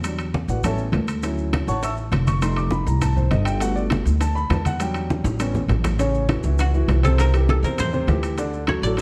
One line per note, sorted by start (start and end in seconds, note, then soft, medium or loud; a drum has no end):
0.00 0.43 E2 loud
0.00 maracas medium
0.04 0.24 F#3 medium
0.04 0.24 G3 medium
0.04 0.25 D4 medium
0.04 high conga soft
0.04 high timbale loud
0.19 high conga soft
0.19 high timbale medium
0.19 maracas soft
0.34 high conga loud
0.34 maracas soft
0.48 0.90 A1 medium
0.48 0.64 F#4 medium
0.48 0.64 B4 medium
0.48 0.64 D5 medium
0.48 0.64 F#5 medium
0.48 high conga soft
0.48 maracas medium
0.63 0.83 G3 medium
0.63 0.84 B3 soft
0.63 0.84 C#4 medium
0.63 0.79 A4 medium
0.63 0.79 C#5 medium
0.63 0.79 E5 medium
0.63 0.79 A5 medium
0.63 high conga soft
0.63 low conga medium
0.63 high timbale medium
0.63 maracas medium
0.78 high conga soft
0.78 maracas soft
0.92 1.62 D2 loud
0.92 high conga medium
0.92 high timbale medium
0.92 low timbale medium
0.92 maracas soft
1.08 high conga soft
1.08 high timbale medium
1.08 maracas medium
1.23 1.66 F#3 medium
1.23 1.66 C#4 medium
1.23 1.66 E4 medium
1.23 high bongo medium
1.23 high conga soft
1.23 high timbale medium
1.23 maracas medium
1.38 high conga soft
1.38 maracas soft
1.53 high bongo medium
1.53 high conga loud
1.53 high timbale loud
1.53 maracas soft
1.67 2.09 A1 medium
1.67 1.83 C#5 medium
1.67 1.83 F#5 medium
1.67 1.82 A5 medium
1.67 1.82 C#6 loud
1.67 high conga soft
1.67 maracas medium
1.83 1.92 E5 medium
1.83 1.92 A5 medium
1.83 1.92 C#6 medium
1.83 1.92 E6 medium
1.83 high bongo medium
1.83 high conga soft
1.83 high timbale medium
1.83 maracas medium
1.97 high conga soft
1.97 maracas soft
2.12 2.81 F1 loud
2.12 high bongo medium
2.12 low bongo medium
2.12 high conga medium
2.12 high timbale medium
2.12 maracas soft
2.27 2.42 C#6 loud
2.27 high conga medium
2.27 high timbale medium
2.27 maracas medium
2.42 2.84 G3 medium
2.42 2.85 A3 medium
2.42 2.85 D#4 medium
2.42 2.57 C6 medium
2.42 high bongo medium
2.42 high conga soft
2.42 high timbale medium
2.42 maracas medium
2.56 2.72 D6 loud
2.56 high bongo soft
2.56 high conga soft
2.56 high timbale medium
2.56 maracas soft
2.71 2.86 B5 medium
2.71 high bongo medium
2.71 high conga medium
2.71 maracas soft
2.86 3.28 C2 loud
2.86 3.01 A#5 medium
2.86 high conga soft
2.86 maracas medium
3.01 3.16 A5 medium
3.01 high bongo medium
3.01 high conga soft
3.01 low conga medium
3.01 high timbale medium
3.01 maracas medium
3.16 3.31 C5 medium
3.16 high bongo soft
3.16 high conga soft
3.16 low conga medium
3.16 maracas soft
3.31 4.00 G1 loud
3.31 3.46 D#5 medium
3.31 high bongo medium
3.31 low bongo medium
3.31 high conga medium
3.31 high timbale medium
3.31 maracas soft
3.45 3.60 G5 loud
3.45 high bongo soft
3.45 high conga soft
3.45 high timbale medium
3.45 maracas medium
3.60 4.03 A3 medium
3.60 4.03 B3 medium
3.60 4.04 F#4 medium
3.60 3.76 F#5 medium
3.60 high bongo medium
3.60 high conga soft
3.60 high timbale medium
3.60 maracas medium
3.76 3.85 D5 medium
3.76 high conga soft
3.76 maracas soft
3.90 high bongo medium
3.90 high conga loud
3.90 high timbale loud
3.90 maracas soft
4.05 4.47 D2 loud
4.05 high conga soft
4.05 maracas medium
4.21 4.36 A5 medium
4.21 high bongo medium
4.21 high conga soft
4.21 high timbale medium
4.21 maracas loud
4.35 4.50 B5 loud
4.35 high conga soft
4.35 maracas soft
4.50 5.19 E2 loud
4.50 4.65 A5 medium
4.50 high bongo medium
4.50 low bongo medium
4.50 high conga medium
4.50 high timbale medium
4.50 low timbale medium
4.50 maracas soft
4.65 4.80 F#5 loud
4.65 high conga medium
4.65 high timbale medium
4.65 maracas medium
4.80 5.38 F#3 medium
4.80 5.37 G3 medium
4.80 5.37 D4 medium
4.80 5.22 G5 medium
4.80 high bongo medium
4.80 high conga soft
4.80 high timbale medium
4.80 maracas medium
4.94 high bongo soft
4.94 high conga soft
4.94 high timbale medium
4.94 maracas soft
5.10 high bongo medium
5.10 high conga medium
5.10 maracas soft
5.24 5.66 A1 loud
5.24 high bongo loud
5.24 maracas medium
5.40 5.60 G3 medium
5.40 5.60 B3 medium
5.40 5.60 C#4 medium
5.40 high bongo medium
5.40 high timbale medium
5.40 maracas loud
5.54 low bongo medium
5.54 low conga medium
5.54 maracas soft
5.68 6.38 A1 loud
5.68 low bongo loud
5.68 low conga medium
5.68 high timbale medium
5.68 maracas soft
5.84 low bongo loud
5.84 low conga medium
5.84 high timbale loud
5.84 maracas medium
5.99 6.24 C#3 medium
5.99 6.24 C#4 medium
5.99 6.24 C#5 medium
5.99 high bongo medium
5.99 high conga soft
5.99 high timbale medium
5.99 maracas medium
6.14 high conga soft
6.14 maracas soft
6.29 6.41 E3 medium
6.29 6.41 E4 medium
6.29 6.42 F#4 medium
6.29 high bongo medium
6.29 high conga loud
6.29 high timbale medium
6.29 maracas soft
6.43 6.85 C#2 loud
6.43 6.69 E3 medium
6.43 6.69 E4 medium
6.43 6.69 F#4 medium
6.43 high conga soft
6.43 maracas medium
6.59 8.71 F#4 medium
6.59 high bongo medium
6.59 high conga soft
6.59 high timbale medium
6.59 maracas medium
6.74 6.98 E3 medium
6.74 6.98 E4 medium
6.74 6.99 F#4 medium
6.74 high conga soft
6.74 maracas soft
6.88 7.57 C2 medium
6.88 high bongo medium
6.88 low bongo medium
6.88 high conga medium
6.88 high timbale medium
6.88 low timbale medium
6.88 maracas soft
7.03 7.28 C3 medium
7.03 7.28 C4 medium
7.03 7.26 A4 medium
7.03 7.28 C5 medium
7.03 high conga medium
7.03 high timbale medium
7.03 maracas medium
7.18 7.56 A#4 loud
7.18 high bongo medium
7.18 high timbale medium
7.18 maracas medium
7.34 7.58 E3 medium
7.34 7.58 E4 medium
7.34 7.59 G4 medium
7.34 high bongo soft
7.34 high conga soft
7.34 high timbale medium
7.34 maracas soft
7.49 7.70 A4 medium
7.49 high bongo medium
7.49 high conga loud
7.49 maracas soft
7.63 8.05 E2 loud
7.63 7.88 C3 medium
7.63 7.88 C4 medium
7.63 9.01 A#4 medium
7.63 7.88 C5 medium
7.63 high conga soft
7.63 maracas medium
7.78 8.75 C5 medium
7.78 high bongo medium
7.78 high conga soft
7.78 low conga medium
7.78 high timbale medium
7.78 maracas medium
7.93 8.05 C3 medium
7.93 8.05 C4 medium
7.93 8.06 C5 loud
7.93 high bongo soft
7.93 high conga soft
7.93 maracas soft
8.07 8.77 D2 medium
8.07 8.33 E3 medium
8.07 8.33 E4 medium
8.07 8.33 G4 medium
8.07 high bongo medium
8.07 low bongo medium
8.07 high conga medium
8.07 high timbale medium
8.07 low timbale medium
8.07 maracas soft
8.23 high bongo soft
8.23 high conga soft
8.23 high timbale medium
8.23 maracas medium
8.38 8.63 D3 medium
8.38 8.63 D4 medium
8.38 8.63 D5 medium
8.38 high bongo medium
8.38 high conga soft
8.38 high timbale medium
8.38 maracas medium
8.53 high conga soft
8.53 maracas soft
8.67 8.80 F#3 medium
8.67 8.80 F#4 medium
8.67 8.81 A4 medium
8.67 8.89 C#5 medium
8.67 high bongo medium
8.67 high conga medium
8.67 high timbale loud
8.67 maracas soft
8.82 9.01 A1 medium
8.82 9.01 F#3 medium
8.82 9.01 F#4 medium
8.82 9.01 A4 medium
8.82 9.01 D5 medium
8.82 high conga soft
8.82 maracas medium
8.97 high timbale medium